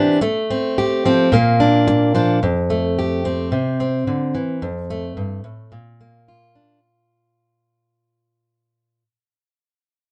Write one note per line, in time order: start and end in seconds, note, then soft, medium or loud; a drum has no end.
0.00 0.18 E3 medium
0.00 0.18 C4 medium
0.00 0.19 D4 medium
0.00 0.18 G4 medium
0.21 1.28 A3 medium
0.21 muted steel-string acoustic guitar stroke medium
0.50 1.04 C4 medium
0.78 1.29 G4 medium
1.05 1.29 F3 medium
1.05 1.32 C4 medium
1.32 2.41 A#2 medium
1.32 2.39 A#3 medium
1.60 2.14 D4 medium
1.88 muted steel-string acoustic guitar stroke medium
2.15 2.38 F3 medium
2.15 2.39 D4 medium
2.43 3.52 F2 medium
2.70 3.48 A3 soft
2.99 3.49 G4 medium
3.25 3.79 C4 medium
3.52 4.06 C3 medium
3.80 4.59 C4 soft
4.07 4.34 D3 medium
4.35 4.61 E3 medium
4.62 5.17 F2 medium
4.90 5.69 A3 medium
5.17 5.43 G2 medium
5.44 5.71 A2 medium
5.72 9.02 A#2 medium
6.01 6.79 A#3 soft
6.28 9.03 F4 medium
6.55 6.79 D4 soft